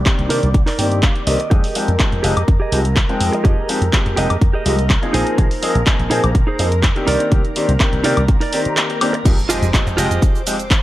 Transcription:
Already playing: D5 D6
0.05 D#3 A#3 C4 D4 G4, muted clean electric guitar stroke, kick, clap, closed hi-hat
0.19 C2, closed hi-hat
0.29 C3 D#3 A#3 C4 D4 D#4 G4 A#4 D5, open hi-hat
0.43 C2, closed hi-hat
0.54 kick, closed hi-hat
0.66 D#4 A#4 D5, clap, open hi-hat
0.79 G2 D#3 A#3 C4 G4 D5 G5, open hi-hat
0.92 closed hi-hat
1.02 F5, muted clean electric guitar stroke, kick, clap, closed hi-hat
1.15 muted clean electric guitar stroke, closed hi-hat
1.27 C2 D#3 A#3 C4 D4 G4 D#5, open hi-hat
1.39 muted clean electric guitar stroke, closed hi-hat
1.50 F2 F3 G#3 C4 D#4 G4 G#4 A#4 D#5 A#5, kick, closed hi-hat
1.64 open hi-hat
1.75 F3 G#3 C4 D#4 G4, open hi-hat
1.88 F2, closed hi-hat
1.99 F3 G#3 C4 D#4 G4, muted clean electric guitar stroke, kick, clap, closed hi-hat
2.12 F2, closed hi-hat
2.23 F1 F3 G#3 C4 D#4 G4 G#4 D#5, open hi-hat
2.37 F2, closed hi-hat, high woodblock
2.48 F2, kick, closed hi-hat
2.60 G4 G#4 D#5
2.72 C2 F3 G#3 C4 D#4 G4, open hi-hat
2.85 closed hi-hat
2.95 muted clean electric guitar stroke, kick, clap, closed hi-hat
3.08 F3 G#3 C4 D#4 G5, muted clean electric guitar stroke, closed hi-hat
3.21 F2, open hi-hat
3.33 muted clean electric guitar stroke, closed hi-hat
3.44 F2 F3 G#3 C4 D#4 G4 G#4 D#5, kick, closed hi-hat
3.69 F3 G#3 C4 D#4 G4, open hi-hat
3.81 F2, closed hi-hat
3.92 F3 G#3 C4 D#4 G4, muted clean electric guitar stroke, kick, clap, closed hi-hat
4.06 F2, closed hi-hat
4.16 F1 F3 G#3 C4 D#4 G4 G#4 D#5, open hi-hat
4.30 F2, closed hi-hat, high woodblock
4.41 F2, kick, closed hi-hat
4.53 G4 G#4 D#5
4.65 C2 F3 G#3 C4 D#4 G4 D#5, open hi-hat
4.79 closed hi-hat
4.89 muted clean electric guitar stroke, kick, clap, closed hi-hat
5.02 F3 A#3 C4 D#4 G#4, muted clean electric guitar stroke, closed hi-hat
5.13 A#1 D#4 G#4 C5 G#5, open hi-hat
5.27 closed hi-hat
5.38 A#1 F3 A#3 C4 D#4 G#4, kick, closed hi-hat
5.51 open hi-hat
5.62 F3 A#3 C4 D#4 G#4, open hi-hat
5.75 A#1, closed hi-hat
5.86 F3 A#3 C4 D#4 G#4, muted clean electric guitar stroke, kick, clap, closed hi-hat
5.99 A#1, closed hi-hat
6.10 A#2 F3 A#3 C4 D#4 G#4 C5, open hi-hat
6.24 A#1, closed hi-hat, high woodblock
6.35 kick, closed hi-hat
6.47 D#4 G#4 C5
6.59 F2 F3 A#3 C4 D#4 G#4, open hi-hat
6.72 closed hi-hat
6.82 muted clean electric guitar stroke, kick, clap, closed hi-hat
6.95 D#3 A#3 C4 D4 G4, muted clean electric guitar stroke, closed hi-hat
7.07 C2 D#4 A#4 D5, open hi-hat
7.20 closed hi-hat
7.32 C2 D#3 A#3 C4 D4 G4, kick, closed hi-hat
7.45 closed hi-hat
7.56 D#3 A#3 C4 D4 G4, open hi-hat
7.68 C2, closed hi-hat
7.80 D#3 A#3 C4 D4 G4, muted clean electric guitar stroke, kick, clap, closed hi-hat
7.93 C2, closed hi-hat
8.04 C3 D#3 A#3 C4 D4 D#4 G4 A#4 D5, open hi-hat
8.17 C2, closed hi-hat, high woodblock
8.28 kick, closed hi-hat
8.40 D#4 A#4 D5, open hi-hat
8.53 D#3 A#3 C4 G4 D5, open hi-hat
8.65 muted slap bass stroke, closed hi-hat
8.76 muted clean electric guitar stroke, clap, closed hi-hat
8.89 muted clean electric guitar stroke, closed hi-hat
9.01 D#3 A#3 C4 D4 G4, open hi-hat, high woodblock
9.13 muted clean electric guitar stroke, closed hi-hat
9.25 F2 F3 G#3 C4 D#4 G4 C5 D6, kick, closed hi-hat, crash, impact, cabasa
9.39 cabasa
9.49 F3 G#3 C4 D#4 F4 G4 G#4 D#5, open hi-hat, cabasa
9.62 F2, closed hi-hat, cabasa
9.74 F3 G#3 C4 D#4 G4, kick, clap, closed hi-hat, cabasa
9.86 F2, muted clean electric guitar stroke, closed hi-hat, cabasa
9.97 F1 F3 G#3 C4 D#4 F4 G4 G#4 D#5, open hi-hat, cabasa
10.11 F2, closed hi-hat, cabasa
10.22 kick, closed hi-hat, cabasa
10.35 cabasa
10.46 F3 G#3 C4 D#4 G4, open hi-hat, cabasa
10.60 closed hi-hat, cabasa
10.71 kick, clap, closed hi-hat, cabasa

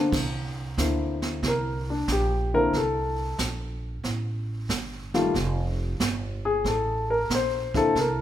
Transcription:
Already playing: D3 A#3 C4 D4
0.12 C2, brush sweep, kick, snare, crash
0.77 D2 D3 A#3 C4 E4, kick, snare, hi-hat pedal
1.22 snare
1.43 C2, brush sweep, kick, snare
1.48 A#4
1.90 D4
2.08 A#1, kick, snare, hi-hat pedal
2.12 G4
2.54 D3 A#3 C4 E4 A#4
2.73 C2, brush sweep, kick, snare
2.77 A4
3.38 A#1, kick, snare, hi-hat pedal
4.04 A1, brush sweep, kick, snare
4.69 G1, kick, snare, hi-hat pedal
5.14 D#3 G3 A3 F4, snare
5.34 F1, brush sweep, kick, snare
6.00 G1, kick, snare, hi-hat pedal
6.45 G#4
6.64 A1 A4, brush sweep, kick, snare
7.10 A#4
7.30 A#1, kick, snare, hi-hat pedal
7.35 C5
7.74 D3 A#3 C4 E4 A4, kick, snare
7.95 C2, brush sweep, kick, snare
8.00 A#4

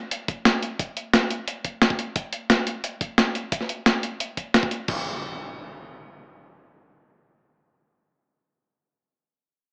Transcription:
0.11 closed hi-hat
0.28 kick, closed hi-hat
0.45 snare, closed hi-hat
0.63 closed hi-hat
0.79 kick, closed hi-hat
0.97 closed hi-hat
1.14 snare, closed hi-hat
1.30 closed hi-hat
1.48 closed hi-hat
1.65 kick, closed hi-hat
1.82 snare, closed hi-hat
1.90 kick
1.99 closed hi-hat
2.16 kick, closed hi-hat
2.33 closed hi-hat
2.50 snare, closed hi-hat
2.67 closed hi-hat
2.84 closed hi-hat
3.01 kick, closed hi-hat
3.18 snare, closed hi-hat
3.35 closed hi-hat
3.52 kick, closed hi-hat
3.61 snare
3.69 closed hi-hat
3.86 snare, closed hi-hat
4.03 closed hi-hat
4.20 closed hi-hat
4.37 kick, closed hi-hat
4.54 snare, closed hi-hat
4.63 kick
4.71 closed hi-hat
4.88 kick, crash, impact

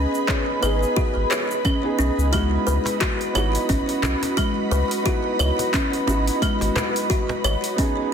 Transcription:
Already playing: B3 C#4 D#4 G#4 B4 D#5 B5
0.15 shaker
0.28 C#5, kick, clap, shaker
0.60 G#1 B3 D#4 B4, claves, shaker
0.64 G#4
0.83 shaker
0.96 F#4, kick, shaker
1.16 G#1
1.31 C#5, clap, shaker
1.51 shaker
1.65 C#4, kick, claves, shaker
1.83 B3 D#4 G#4
1.99 B1 C#4, shaker
2.18 C#2, shaker
2.31 G#3 B3 D#4 E4 F#4 D#5 B5, kick, open hi-hat, claves, shaker
2.35 F#4
2.67 C#2 B4, shaker
2.86 cajon slap, open hi-hat, shaker
3.01 F#4, kick, clap, open hi-hat, shaker
3.21 open hi-hat
3.33 G#1 B3 D#4 E4 C#5, cajon slap, claves, shaker
3.37 F#4
3.55 open hi-hat, shaker
3.69 G#1 C#4, kick, open hi-hat, shaker
3.89 open hi-hat
4.03 B1 C#4, cajon bass, clap, shaker
4.23 cajon slap, open hi-hat, shaker
4.37 G#3, kick, open hi-hat, claves, shaker
4.71 C#2 B4, shaker
4.91 open hi-hat, shaker
5.04 B3 D#4 E4 F#4, kick, open hi-hat, shaker
5.39 C#2 C#5, claves, shaker
5.59 cajon slap, open hi-hat, shaker
5.74 C#4, kick, clap, open hi-hat, shaker
5.93 open hi-hat
6.06 G#1 B3 C#4 D#4 E4 F#4, cajon slap, shaker
6.27 open hi-hat, shaker
6.42 G#3, kick, open hi-hat, claves, shaker
6.61 G#1, cajon slap, open hi-hat
6.76 B4, cajon bass, cajon slap, clap, shaker
6.96 open hi-hat, shaker
7.10 F#4, kick, open hi-hat, shaker
7.29 cajon slap
7.44 G#1 C#5, claves, shaker
7.64 open hi-hat, shaker
7.76 B3 C#4 D#4 G#4 B4 D#5 B5, kick, open hi-hat, shaker

